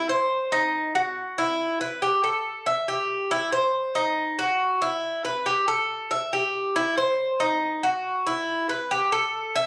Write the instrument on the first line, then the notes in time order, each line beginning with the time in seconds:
cuban tres
0.09 C5
0.52 D#4
0.95 F#4
1.38 E4
1.81 B4
2.02 G4
2.24 A4
2.66 E5
2.88 G4
3.31 E4
3.52 C5
3.95 D#4
4.39 F#4
4.82 E4
5.25 B4
5.46 G4
5.68 A4
6.11 E5
6.33 G4
6.76 E4
6.98 C5
7.40 D#4
7.83 F#4
8.27 E4
8.69 B4
8.91 G4
9.12 A4
9.56 E5